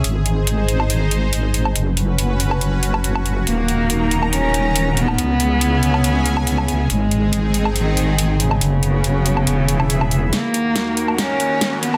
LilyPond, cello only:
\new Staff \with { instrumentName = "Cello" } { \time 4/4 \key ees \phrygian \tempo 4 = 140 r1 | r1 | bes2 des'4. ces'8~ | ces'1 |
aes2 ees4. des8~ | des1 | bes2 des'4. ces'8 | }